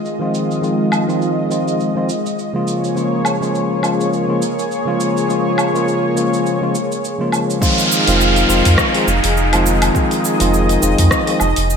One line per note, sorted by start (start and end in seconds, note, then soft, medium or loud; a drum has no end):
0.00 2.63 G#3 medium
0.00 2.63 F4 medium
0.00 2.63 D#5 medium
0.05 cabasa soft
0.19 0.59 D#3 medium
0.19 0.59 F3 medium
0.19 0.59 G#3 medium
0.19 0.60 C4 medium
0.19 0.60 F4 medium
0.34 cabasa medium
0.51 cabasa soft
0.61 1.04 D#3 medium
0.61 1.04 F3 medium
0.61 1.04 G#3 medium
0.61 1.05 C4 medium
0.61 1.05 F4 medium
0.61 cabasa soft
0.92 cabasa medium
0.92 low woodblock medium
1.07 1.46 D#3 medium
1.07 1.47 F3 medium
1.07 1.47 G#3 medium
1.07 1.47 C4 medium
1.07 1.48 F4 medium
1.07 cabasa soft
1.22 cabasa soft
1.49 1.91 D#3 medium
1.49 1.92 F3 medium
1.49 1.92 G#3 medium
1.49 1.92 C4 medium
1.49 1.93 F4 medium
1.49 cabasa medium
1.68 cabasa soft
1.80 cabasa soft
1.95 2.08 D#3 medium
1.95 2.09 F3 medium
1.95 2.09 G#3 medium
1.95 2.09 C4 medium
1.95 2.09 F4 medium
2.09 cabasa medium
2.26 cabasa soft
2.39 cabasa soft
2.53 2.92 C#3 medium
2.53 2.93 F3 medium
2.53 2.93 G#3 medium
2.53 2.93 A#3 medium
2.53 2.94 F4 medium
2.66 7.58 A#3 medium
2.66 7.58 G#4 medium
2.66 7.57 C#5 medium
2.66 cabasa medium
2.84 cabasa soft
2.95 3.37 C#3 medium
2.95 3.37 F3 medium
2.95 3.38 G#3 medium
2.95 3.38 A#3 medium
2.95 3.38 F4 medium
2.95 cabasa soft
3.25 cabasa medium
3.25 low woodblock medium
3.40 3.79 C#3 medium
3.40 3.80 F3 medium
3.40 3.80 G#3 medium
3.40 3.80 A#3 medium
3.40 3.81 F4 medium
3.40 cabasa soft
3.55 cabasa soft
3.82 4.24 C#3 medium
3.82 4.24 F3 medium
3.82 4.25 G#3 medium
3.82 4.25 A#3 medium
3.82 4.25 F4 medium
3.82 cabasa medium
3.82 low woodblock soft
4.01 cabasa soft
4.13 cabasa soft
4.27 4.41 C#3 medium
4.27 4.41 F3 medium
4.27 4.42 G#3 medium
4.27 4.42 A#3 medium
4.27 4.42 F4 medium
4.42 cabasa medium
4.59 cabasa soft
4.71 cabasa soft
4.85 5.25 C#3 medium
4.85 5.25 F3 medium
4.85 5.26 G#3 medium
4.85 5.26 A#3 medium
4.85 5.26 F4 medium
5.00 cabasa medium
5.17 cabasa soft
5.28 5.70 C#3 medium
5.28 5.70 F3 medium
5.28 5.71 G#3 medium
5.28 5.71 A#3 medium
5.28 5.71 F4 medium
5.28 cabasa soft
5.58 cabasa medium
5.58 low woodblock medium
5.73 6.13 C#3 medium
5.73 6.13 F3 medium
5.73 6.13 G#3 medium
5.73 6.13 A#3 medium
5.73 6.14 F4 medium
5.73 cabasa soft
5.88 cabasa soft
6.15 6.57 C#3 medium
6.15 6.57 F3 medium
6.15 6.58 G#3 medium
6.15 6.58 A#3 medium
6.15 6.59 F4 medium
6.15 cabasa medium
6.34 cabasa soft
6.46 cabasa soft
6.61 6.74 C#3 medium
6.61 6.75 F3 medium
6.61 6.75 G#3 medium
6.61 6.75 A#3 medium
6.61 6.75 F4 medium
6.75 cabasa medium
6.92 cabasa soft
7.05 cabasa soft
7.19 7.58 C#3 medium
7.19 7.58 F3 medium
7.19 7.59 G#3 medium
7.19 7.59 A#3 medium
7.19 7.59 F4 medium
7.32 cabasa medium
7.32 low woodblock medium
7.50 cabasa soft
7.60 8.03 D#3 medium
7.60 8.03 F3 medium
7.60 8.03 G#3 medium
7.60 8.04 C4 medium
7.60 11.77 D#4 medium
7.60 8.04 F4 medium
7.60 11.77 G#4 medium
7.60 9.92 F5 medium
7.60 kick loud
7.60 downlifter medium
7.60 cabasa soft
7.78 open hi-hat soft
7.78 cabasa soft
7.92 cabasa medium
8.06 8.45 F1 loud
8.06 8.46 D#3 medium
8.06 8.46 F3 medium
8.06 8.46 G#3 medium
8.06 8.47 C4 medium
8.06 8.47 F4 loud
8.06 open hi-hat medium
8.06 cabasa soft
8.21 cabasa soft
8.36 open hi-hat soft
8.36 cabasa soft
8.47 8.62 F1 medium
8.47 8.90 D#3 medium
8.47 8.90 F3 medium
8.47 8.91 G#3 medium
8.47 8.91 C4 medium
8.47 8.91 F4 medium
8.47 cabasa medium
8.65 8.75 F2 loud
8.65 kick medium
8.65 open hi-hat medium
8.65 cabasa soft
8.78 kick loud
8.78 cross-stick medium
8.78 cabasa soft
8.94 9.07 D#3 medium
8.94 9.08 F3 medium
8.94 9.08 G#3 medium
8.94 9.08 C4 medium
8.94 9.08 F4 medium
8.94 open hi-hat soft
9.07 9.20 F1 loud
9.07 cabasa medium
9.24 9.90 F1 medium
9.24 open hi-hat medium
9.24 cabasa soft
9.37 cabasa soft
9.52 9.91 D#3 medium
9.52 9.91 F3 medium
9.52 9.92 G#3 medium
9.52 9.92 C4 medium
9.52 9.92 F4 medium
9.52 open hi-hat soft
9.52 cabasa soft
9.52 low woodblock medium
9.66 cabasa medium
9.82 open hi-hat medium
9.82 cabasa soft
9.82 low woodblock medium
9.94 10.36 D#3 medium
9.94 10.36 F3 medium
9.94 10.37 G#3 medium
9.94 10.37 C4 medium
9.94 10.37 F4 medium
9.94 11.77 D#5 loud
9.94 kick loud
9.94 cabasa soft
10.11 open hi-hat soft
10.11 cabasa soft
10.25 cabasa medium
10.39 10.78 F1 medium
10.39 10.78 D#3 medium
10.39 10.79 F3 medium
10.39 10.79 G#3 medium
10.39 10.79 C4 medium
10.39 10.80 F4 medium
10.39 open hi-hat medium
10.39 cabasa soft
10.54 cabasa soft
10.69 open hi-hat soft
10.69 cabasa soft
10.81 10.95 F1 medium
10.81 11.23 D#3 medium
10.81 11.24 F3 medium
10.81 11.24 G#3 medium
10.81 11.24 C4 medium
10.81 11.24 F4 medium
10.81 cabasa medium
10.98 11.09 F2 loud
10.98 kick medium
10.98 open hi-hat medium
10.98 cabasa soft
11.11 kick loud
11.11 cross-stick medium
11.11 cabasa soft
11.26 11.40 D#3 medium
11.26 11.40 F3 medium
11.26 11.41 G#3 medium
11.26 11.41 C4 medium
11.26 11.41 F4 medium
11.26 open hi-hat soft
11.40 11.53 F1 medium
11.40 cabasa medium
11.40 low woodblock medium
11.56 11.77 F1 medium
11.56 open hi-hat medium
11.56 cabasa soft
11.70 cabasa soft